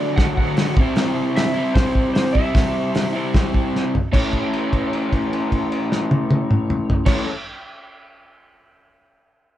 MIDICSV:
0, 0, Header, 1, 4, 480
1, 0, Start_track
1, 0, Tempo, 395778
1, 1182, Time_signature, 4, 2, 24, 8
1, 11617, End_track
2, 0, Start_track
2, 0, Title_t, "Electric slide guitar"
2, 0, Program_c, 0, 29
2, 0, Note_on_c, 0, 74, 103
2, 198, Note_on_c, 0, 78, 98
2, 224, Note_off_c, 0, 74, 0
2, 435, Note_off_c, 0, 78, 0
2, 449, Note_on_c, 0, 78, 99
2, 902, Note_off_c, 0, 78, 0
2, 1656, Note_on_c, 0, 76, 107
2, 2104, Note_off_c, 0, 76, 0
2, 2113, Note_on_c, 0, 72, 82
2, 2575, Note_off_c, 0, 72, 0
2, 2590, Note_on_c, 0, 72, 78
2, 2823, Note_on_c, 0, 76, 97
2, 2827, Note_off_c, 0, 72, 0
2, 4711, Note_off_c, 0, 76, 0
2, 5008, Note_on_c, 0, 73, 83
2, 8461, Note_off_c, 0, 73, 0
2, 8568, Note_on_c, 0, 73, 85
2, 8771, Note_off_c, 0, 73, 0
2, 11617, End_track
3, 0, Start_track
3, 0, Title_t, "Overdriven electric guitar"
3, 0, Program_c, 1, 29
3, 0, Note_on_c, 1, 50, 91
3, 0, Note_on_c, 1, 54, 93
3, 0, Note_on_c, 1, 57, 99
3, 0, Note_on_c, 1, 62, 110
3, 190, Note_off_c, 1, 50, 0
3, 205, Note_on_c, 1, 50, 79
3, 212, Note_off_c, 1, 54, 0
3, 220, Note_off_c, 1, 57, 0
3, 229, Note_on_c, 1, 54, 79
3, 230, Note_off_c, 1, 62, 0
3, 251, Note_on_c, 1, 57, 91
3, 273, Note_on_c, 1, 62, 86
3, 919, Note_off_c, 1, 50, 0
3, 925, Note_on_c, 1, 48, 88
3, 931, Note_off_c, 1, 54, 0
3, 942, Note_off_c, 1, 57, 0
3, 946, Note_on_c, 1, 55, 82
3, 953, Note_off_c, 1, 62, 0
3, 966, Note_on_c, 1, 60, 82
3, 986, Note_on_c, 1, 64, 99
3, 1859, Note_off_c, 1, 64, 0
3, 1864, Note_on_c, 1, 64, 80
3, 1892, Note_off_c, 1, 60, 0
3, 1897, Note_on_c, 1, 60, 88
3, 1909, Note_off_c, 1, 55, 0
3, 1914, Note_on_c, 1, 55, 73
3, 1929, Note_off_c, 1, 48, 0
3, 1934, Note_on_c, 1, 48, 76
3, 2830, Note_off_c, 1, 48, 0
3, 2843, Note_off_c, 1, 60, 0
3, 2844, Note_on_c, 1, 48, 85
3, 2852, Note_off_c, 1, 55, 0
3, 2869, Note_on_c, 1, 55, 86
3, 2890, Note_on_c, 1, 60, 74
3, 2896, Note_off_c, 1, 64, 0
3, 2901, Note_on_c, 1, 64, 81
3, 3784, Note_off_c, 1, 64, 0
3, 3797, Note_off_c, 1, 48, 0
3, 3799, Note_on_c, 1, 64, 85
3, 3809, Note_off_c, 1, 55, 0
3, 3812, Note_off_c, 1, 60, 0
3, 3827, Note_on_c, 1, 60, 82
3, 3849, Note_on_c, 1, 55, 74
3, 3873, Note_on_c, 1, 48, 57
3, 4754, Note_off_c, 1, 64, 0
3, 4767, Note_off_c, 1, 60, 0
3, 4779, Note_off_c, 1, 55, 0
3, 4791, Note_off_c, 1, 48, 0
3, 5001, Note_on_c, 1, 57, 91
3, 5023, Note_on_c, 1, 61, 102
3, 5033, Note_on_c, 1, 64, 93
3, 5053, Note_on_c, 1, 69, 113
3, 8556, Note_off_c, 1, 57, 0
3, 8561, Note_on_c, 1, 57, 104
3, 8583, Note_off_c, 1, 61, 0
3, 8588, Note_off_c, 1, 64, 0
3, 8588, Note_on_c, 1, 61, 106
3, 8593, Note_on_c, 1, 64, 104
3, 8614, Note_off_c, 1, 69, 0
3, 8619, Note_on_c, 1, 69, 112
3, 8783, Note_off_c, 1, 57, 0
3, 8796, Note_off_c, 1, 61, 0
3, 8799, Note_off_c, 1, 64, 0
3, 8812, Note_off_c, 1, 69, 0
3, 11617, End_track
4, 0, Start_track
4, 0, Title_t, "Drums"
4, 212, Note_on_c, 9, 46, 52
4, 214, Note_on_c, 9, 36, 105
4, 224, Note_on_c, 9, 38, 106
4, 334, Note_off_c, 9, 46, 0
4, 335, Note_off_c, 9, 36, 0
4, 346, Note_off_c, 9, 38, 0
4, 453, Note_on_c, 9, 36, 69
4, 575, Note_off_c, 9, 36, 0
4, 689, Note_on_c, 9, 46, 58
4, 701, Note_on_c, 9, 38, 110
4, 810, Note_off_c, 9, 46, 0
4, 822, Note_off_c, 9, 38, 0
4, 931, Note_on_c, 9, 36, 102
4, 1052, Note_off_c, 9, 36, 0
4, 1163, Note_on_c, 9, 46, 57
4, 1175, Note_on_c, 9, 38, 111
4, 1284, Note_off_c, 9, 46, 0
4, 1296, Note_off_c, 9, 38, 0
4, 1656, Note_on_c, 9, 46, 57
4, 1668, Note_on_c, 9, 38, 115
4, 1777, Note_off_c, 9, 46, 0
4, 1789, Note_off_c, 9, 38, 0
4, 2129, Note_on_c, 9, 36, 112
4, 2132, Note_on_c, 9, 46, 59
4, 2144, Note_on_c, 9, 38, 113
4, 2250, Note_off_c, 9, 36, 0
4, 2253, Note_off_c, 9, 46, 0
4, 2266, Note_off_c, 9, 38, 0
4, 2368, Note_on_c, 9, 36, 74
4, 2489, Note_off_c, 9, 36, 0
4, 2610, Note_on_c, 9, 46, 60
4, 2622, Note_on_c, 9, 38, 111
4, 2731, Note_off_c, 9, 46, 0
4, 2743, Note_off_c, 9, 38, 0
4, 2852, Note_on_c, 9, 36, 71
4, 2973, Note_off_c, 9, 36, 0
4, 3092, Note_on_c, 9, 36, 109
4, 3097, Note_on_c, 9, 46, 60
4, 3109, Note_on_c, 9, 38, 95
4, 3213, Note_off_c, 9, 36, 0
4, 3218, Note_off_c, 9, 46, 0
4, 3230, Note_off_c, 9, 38, 0
4, 3575, Note_on_c, 9, 46, 60
4, 3587, Note_on_c, 9, 38, 121
4, 3696, Note_off_c, 9, 46, 0
4, 3709, Note_off_c, 9, 38, 0
4, 4054, Note_on_c, 9, 46, 52
4, 4056, Note_on_c, 9, 36, 105
4, 4066, Note_on_c, 9, 38, 104
4, 4175, Note_off_c, 9, 46, 0
4, 4177, Note_off_c, 9, 36, 0
4, 4187, Note_off_c, 9, 38, 0
4, 4298, Note_on_c, 9, 36, 71
4, 4419, Note_off_c, 9, 36, 0
4, 4559, Note_on_c, 9, 38, 61
4, 4680, Note_off_c, 9, 38, 0
4, 4791, Note_on_c, 9, 43, 81
4, 4912, Note_off_c, 9, 43, 0
4, 5015, Note_on_c, 9, 36, 100
4, 5021, Note_on_c, 9, 49, 90
4, 5137, Note_off_c, 9, 36, 0
4, 5142, Note_off_c, 9, 49, 0
4, 5250, Note_on_c, 9, 49, 40
4, 5252, Note_on_c, 9, 36, 58
4, 5371, Note_off_c, 9, 49, 0
4, 5373, Note_off_c, 9, 36, 0
4, 5499, Note_on_c, 9, 57, 48
4, 5620, Note_off_c, 9, 57, 0
4, 5735, Note_on_c, 9, 36, 70
4, 5738, Note_on_c, 9, 49, 49
4, 5856, Note_off_c, 9, 36, 0
4, 5859, Note_off_c, 9, 49, 0
4, 5980, Note_on_c, 9, 57, 49
4, 6101, Note_off_c, 9, 57, 0
4, 6216, Note_on_c, 9, 36, 66
4, 6220, Note_on_c, 9, 49, 44
4, 6337, Note_off_c, 9, 36, 0
4, 6341, Note_off_c, 9, 49, 0
4, 6464, Note_on_c, 9, 57, 49
4, 6585, Note_off_c, 9, 57, 0
4, 6695, Note_on_c, 9, 36, 58
4, 6697, Note_on_c, 9, 49, 44
4, 6817, Note_off_c, 9, 36, 0
4, 6818, Note_off_c, 9, 49, 0
4, 6935, Note_on_c, 9, 57, 52
4, 7057, Note_off_c, 9, 57, 0
4, 7180, Note_on_c, 9, 38, 86
4, 7301, Note_off_c, 9, 38, 0
4, 7411, Note_on_c, 9, 48, 100
4, 7533, Note_off_c, 9, 48, 0
4, 7647, Note_on_c, 9, 48, 113
4, 7768, Note_off_c, 9, 48, 0
4, 7890, Note_on_c, 9, 47, 92
4, 8012, Note_off_c, 9, 47, 0
4, 8127, Note_on_c, 9, 45, 85
4, 8249, Note_off_c, 9, 45, 0
4, 8366, Note_on_c, 9, 43, 102
4, 8487, Note_off_c, 9, 43, 0
4, 8564, Note_on_c, 9, 49, 102
4, 8567, Note_on_c, 9, 36, 112
4, 8576, Note_on_c, 9, 38, 93
4, 8685, Note_off_c, 9, 49, 0
4, 8689, Note_off_c, 9, 36, 0
4, 8697, Note_off_c, 9, 38, 0
4, 11617, End_track
0, 0, End_of_file